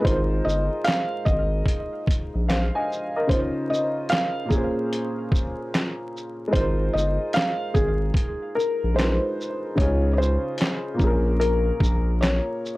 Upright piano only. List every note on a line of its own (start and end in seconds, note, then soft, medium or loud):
0.00 3.22 G#3 medium
0.00 3.24 D#4 medium
0.05 3.25 F4 medium
0.05 2.46 A#4 medium
0.11 2.47 C5 medium
2.49 2.74 C5 soft
2.49 2.74 F5 medium
2.75 3.14 D#5 medium
2.75 3.13 G#5 medium
3.16 3.55 A#4 medium
3.16 3.54 D#5 medium
3.27 4.50 C#3 medium
3.27 4.50 C#4 soft
3.27 4.51 D#4 medium
3.32 4.52 F4 medium
3.32 4.53 C5 medium
4.45 6.47 A#2 medium
4.45 6.48 A#3 medium
4.52 6.50 C#4 medium
4.52 6.51 G#4 medium
4.58 6.53 C5 medium
6.48 8.90 G#3 medium
6.48 8.91 D#4 medium
6.54 8.93 F4 medium
6.54 8.95 A#4 medium
6.60 8.96 C5 medium
8.94 9.77 G#3 soft
8.94 9.77 D#4 soft
8.94 9.78 F4 soft
8.99 9.79 A#4 soft
8.99 9.07 B4 soft
9.07 9.83 C5 medium
9.75 10.98 C#3 medium
9.75 10.99 C#4 medium
9.75 11.00 D#4 medium
9.80 11.01 F4 medium
9.80 11.01 G#4 medium
10.94 12.77 A#2 medium
10.94 12.77 A#3 medium
11.00 12.77 C#4 medium
11.00 12.77 G#4 medium
11.07 12.77 A#4 medium